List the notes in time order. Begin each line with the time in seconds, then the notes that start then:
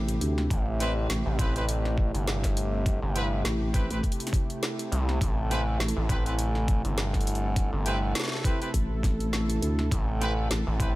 Already playing: A1 C3 A3 E4 G4
0.09 closed hi-hat
0.21 D2, closed hi-hat
0.38 snare
0.50 A1, kick, closed hi-hat
0.80 C4 E4 G4 B4, snare, closed hi-hat
1.09 A1, snare, closed hi-hat
1.26 A1
1.39 C4 E4 G4 B4, kick, closed hi-hat
1.55 C4 E4 G4 B4, closed hi-hat
1.69 closed hi-hat
1.85 snare
1.98 kick
2.14 G1, closed hi-hat
2.28 snare
2.44 kick, snare, closed hi-hat
2.57 closed hi-hat
2.86 kick, closed hi-hat
3.02 G1
3.15 C4 E4 G4 B4, closed hi-hat
3.44 A1, snare, closed hi-hat
3.74 C4 E4 G4 B4, kick, closed hi-hat
3.90 A1 C4 E4 G4 B4, closed hi-hat
4.03 kick, closed hi-hat
4.12 closed hi-hat
4.20 closed hi-hat
4.27 snare, closed hi-hat
4.33 kick, closed hi-hat
4.50 closed hi-hat
4.63 snare
4.79 closed hi-hat
4.92 C2, closed hi-hat
5.09 snare
5.21 A1 A4, kick, closed hi-hat
5.50 C4 E4 G4 B4, snare, closed hi-hat
5.80 A1, snare
5.88 closed hi-hat
5.97 A1
6.09 C4 E4 G4 B4, kick, closed hi-hat
6.26 C4 E4 G4 B4, closed hi-hat
6.39 closed hi-hat
6.55 snare
6.68 kick, closed hi-hat
6.85 G1, closed hi-hat
6.98 snare
7.14 kick, snare, closed hi-hat
7.21 closed hi-hat
7.27 closed hi-hat
7.35 closed hi-hat
7.56 kick, closed hi-hat
7.73 G1
7.86 C4 E4 G4 B4, closed hi-hat
8.15 snare, closed hi-hat
8.20 snare
8.24 snare
8.28 snare
8.32 snare
8.35 snare
8.39 snare
8.42 C4 E4 G4 B4, kick, snare, closed hi-hat
8.61 C4 E4 G4 B4, closed hi-hat
8.74 A1, kick, closed hi-hat
9.03 kick, snare, closed hi-hat
9.20 closed hi-hat
9.33 snare
9.50 closed hi-hat
9.62 D2, closed hi-hat
9.79 snare
9.91 A1, kick, closed hi-hat
10.21 C4 E4 G4 B4, snare, closed hi-hat
10.50 A1, snare, closed hi-hat
10.67 A1
10.80 C4 E4 G4 B4, kick, closed hi-hat